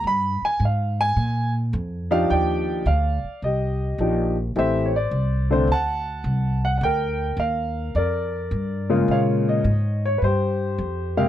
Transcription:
0.04 upright bass G2, grand piano B5
0.42 grand piano G#5, muted upright bass stroke
0.60 upright bass G#2
0.65 grand piano F5
1.01 grand piano G#5
1.16 upright bass A#2
1.73 upright bass F2
2.11 grand piano F3 D4 D#4 G4 F5
2.30 upright bass D#2, grand piano D5 G5
2.86 upright bass D2, grand piano F5
3.24 muted upright bass stroke
3.42 upright bass C2, grand piano G4 D#5
3.98 upright bass A#1, grand piano F3 D4 D#4 G4
4.56 upright bass A1, grand piano E3 A3 C4 G4 C5 E5
4.86 grand piano C#5
4.96 grand piano D5
5.11 upright bass C2
5.50 grand piano D3 A3 C4 D4 C5
5.67 upright bass D2
5.72 grand piano F#5 A5
6.24 upright bass C2
6.65 grand piano F#5
6.78 upright bass D2, grand piano F#5
6.83 grand piano A#4 G5
7.37 upright bass D#2, grand piano F5
7.95 upright bass F2, grand piano A#4 D5
8.51 upright bass G2
8.90 grand piano C#3 G#3 A#3 F4
9.08 upright bass A#2, grand piano F5
9.12 grand piano C#5
9.49 grand piano D#5
9.64 upright bass G#2
10.06 grand piano C#5
10.18 upright bass G2, grand piano B4
10.24 grand piano G4 C5
10.78 upright bass F2
11.17 grand piano C3 G#3 A#3 G4 F5

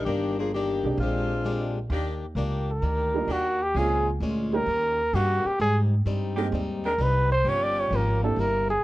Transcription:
0.05 upright bass G1, saxophone section D#3 A#3 D4 G4, steel-string acoustic guitar D#3 A#3
0.10 steel-string acoustic guitar D4 G4
0.38 saxophone section F3 A#3 D4 G#4
0.54 saxophone section D#3 A#3 D4 G4, steel-string acoustic guitar D#3 A#3 D4 G4
0.83 upright bass B1, upright piano G#3 C4 D4 G4
0.98 upright bass A#1, steel-string acoustic guitar A#2 G#3, saxophone section G#3 C4 D4 F4
1.02 steel-string acoustic guitar D4 G4
1.45 steel-string acoustic guitar A#2 G#3 D4 G4
1.90 upright bass D#2, steel-string acoustic guitar D#3 A#3 D4, saxophone section D#3 A#3 D4 G4
1.94 steel-string acoustic guitar G4
2.35 upright bass C#2, steel-string acoustic guitar D#3 A#3 D4 G4
2.70 trumpet A#4
2.82 upright bass D2, steel-string acoustic guitar D#3 A#3 D4 G4
3.14 upright piano G3 A#3 D4 D#4 F4
3.27 upright bass D#2, saxophone section D#3 A#3 D4 G4, steel-string acoustic guitar D#3 A#3 D4
3.31 trumpet F#4, steel-string acoustic guitar G4
3.62 trumpet G4
3.74 upright bass C#2, steel-string acoustic guitar A#2 G#3 C#4, saxophone section F3 A#3 C#4 G#4, upright piano G#3 A#3 C4 C#4 F4, trumpet G#4
3.78 steel-string acoustic guitar F4
4.20 upright bass D2, steel-string acoustic guitar A#2 G#3 C#4 F4
4.53 upright piano G3 A#3 C#4 D#4 G4, trumpet A#4
4.66 upright bass D#2, steel-string acoustic guitar D#3 A#3 C#4
4.71 steel-string acoustic guitar G4
5.13 upright bass G2, saxophone section D#3 A#3 C#4 D#4, steel-string acoustic guitar D#3 A#3 C#4 G4, trumpet F#4
5.45 trumpet G4, muted upright bass stroke
5.60 upright bass G#2, steel-string acoustic guitar G#2 G3 C4 D#4, trumpet G#4
6.06 upright bass G2, steel-string acoustic guitar G#2 G3 C4 D#4
6.36 saxophone section D#3 G#3 C4 G4, upright piano G#3 A#3 C4 D#4 G4
6.52 upright bass D#2, steel-string acoustic guitar G#2 G3 C4 D#4
6.84 saxophone section D#3 G#3 C4 D4, trumpet A#4
6.98 upright bass C2, steel-string acoustic guitar G#2 G3 C4 D#4
7.02 trumpet B4
7.32 trumpet C5
7.44 upright bass G1, steel-string acoustic guitar G2 F3 A#3 C#4, saxophone section F3 A#3 C#4 G4
7.49 trumpet C#5
7.63 trumpet D5
7.80 trumpet C#5
7.90 upright bass G#1, steel-string acoustic guitar G2 F3 A#3 C#4
7.96 trumpet A#4
8.23 upright piano A#3 C4 D4 E4 G4, trumpet A4
8.36 upright bass G1, steel-string acoustic guitar C3 G3 A#3, trumpet A#4
8.41 steel-string acoustic guitar E4
8.70 trumpet G#4

